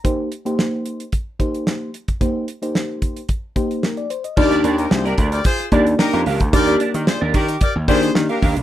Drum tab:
CC |----------------|----------------|x---------------|----------------|
HH |x-xx--xxx-xx--xx|x-xx--xxx-xx-xxx|-xxx-xxxx-xx-xox|xxxx--xxx-xx-xox|
SD |----o-------o---|----o-------o---|----o-------o---|----o-------o---|
BD |o-------o-o----o|o-----o-o-o-----|o-----o-o-o----o|o-----o-o-o---o-|